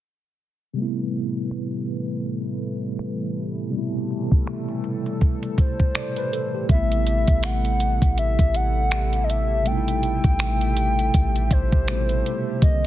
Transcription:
0.73 A2 C3 E3 G3 A3 B4
0.78 A3 B3
0.82 E4
1.51 finger snap
2.99 finger snap
3.70 C3 G3 A4, closed hi-hat
3.74 B2 A3
3.78 E4
3.95 closed hi-hat
4.10 closed hi-hat
4.31 kick, closed hi-hat
4.47 finger snap, closed hi-hat
4.68 closed hi-hat
4.84 closed hi-hat
5.06 closed hi-hat
5.21 kick, closed hi-hat
5.43 closed hi-hat
5.58 C5, kick, closed hi-hat
5.80 kick
5.95 D5, finger snap, closed hi-hat
6.16 B4, closed hi-hat
6.33 A4, closed hi-hat
6.55 G4
6.66 A1 B2 G3 A3 E4 G4 A4 E5, kick, closed hi-hat
6.70 C3 A3 B3 E5
6.74 E4
6.92 closed hi-hat
7.07 closed hi-hat
7.28 A1, kick, closed hi-hat
7.43 F#5, finger snap, closed hi-hat
7.65 closed hi-hat
7.80 closed hi-hat
8.02 A1, kick, closed hi-hat
8.18 E5, closed hi-hat
8.39 A1, kick, closed hi-hat
8.54 F#5, closed hi-hat
8.91 finger snap, closed hi-hat
9.13 closed hi-hat
9.24 D#5
9.30 E5, closed hi-hat
9.62 C3 G3, closed hi-hat
9.66 B2 A3 G5
9.71 D#4
9.77 E4
9.88 closed hi-hat
10.03 closed hi-hat
10.24 A1, kick, closed hi-hat
10.39 finger snap, closed hi-hat
10.61 closed hi-hat
10.77 closed hi-hat
10.99 closed hi-hat
11.14 A1, kick, closed hi-hat
11.36 closed hi-hat
11.51 A1 C5, kick, closed hi-hat
11.72 A1, kick
11.87 B2 G3 A3, finger snap, closed hi-hat
11.91 C3 E4
12.09 closed hi-hat
12.26 closed hi-hat
12.59 C2 C3 D#3 C4 A#4 C5 G5, kick, closed hi-hat
12.63 G3 A#3 D#5
12.67 D3

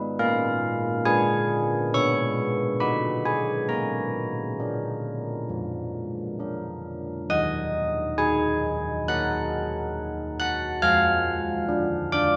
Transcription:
Already playing: D#4 B4
0.19 A#3 F5
1.05 D4 G#4 G#5
1.94 B3 C#6
2.80 D#4 F#4 B5
3.26 G#5
3.69 A#3 A#5
4.60 D4 A#4
5.49 F3
6.39 D4 A#4
7.30 D#3 D#5 D#6
8.18 D#4 G#5
9.08 D#4 A#4 F#5 F#6
10.40 F#5 F#6
10.82 F3 F5 F6
11.69 D4
12.12 D5 D6

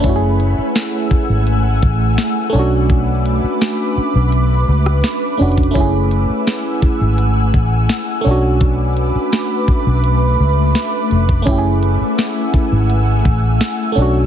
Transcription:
Already playing: A3 A4
0.00 A3 C#4, kick, closed hi-hat
0.04 F#1 E4 F#5 G#5 E6
0.09 F#4
0.16 G#4
0.40 closed hi-hat
0.58 muted fingered electric bass stroke
0.75 snare, closed hi-hat
1.11 muted fingered electric bass stroke, kick
1.30 G#1
1.47 closed hi-hat
1.83 A1, kick
2.18 snare, closed hi-hat
2.50 A3 C#4
2.54 B1 D4 B4 B5 D6, closed hi-hat
2.59 F#4
2.90 kick, closed hi-hat
3.26 closed hi-hat
3.44 muted fingered electric bass stroke
3.61 snare, closed hi-hat
3.97 muted fingered electric bass stroke
4.15 B1
4.32 closed hi-hat
4.68 C#2
4.86 cross-stick
5.04 snare, closed hi-hat
5.37 F1 A3 C#4 D4, closed hi-hat
5.42 F#4
5.52 closed hi-hat
5.58 kick
5.63 closed hi-hat
5.71 A3 C#4
5.75 F#1 E4 F#5 G#5 E6, kick, closed hi-hat
5.80 G#4
6.11 closed hi-hat
6.29 muted fingered electric bass stroke
6.47 snare, closed hi-hat
6.82 muted fingered electric bass stroke, kick
7.01 G#1
7.18 closed hi-hat
7.54 A1, kick
7.89 snare, closed hi-hat
8.21 A3 C#4
8.25 B1 A3 D4 B4 B5 D6, closed hi-hat
8.31 F#4
8.61 kick, closed hi-hat
8.97 closed hi-hat
9.15 muted fingered electric bass stroke
9.32 snare, closed hi-hat
9.68 muted fingered electric bass stroke, kick
9.87 B1
10.04 closed hi-hat
10.40 C#2
10.75 snare, closed hi-hat
11.11 F1, closed hi-hat
11.29 kick
11.42 A3 C#4
11.46 F#1 E4 F#5 G#5 E6, kick, closed hi-hat
11.52 G4
11.58 G#4
11.83 closed hi-hat
12.01 muted fingered electric bass stroke
12.18 snare, closed hi-hat
12.54 muted fingered electric bass stroke, kick
12.72 G#1
12.90 closed hi-hat
13.25 A1, kick
13.61 snare, closed hi-hat
13.92 A3 C#4
13.97 B1 D4, closed hi-hat
14.02 F#4

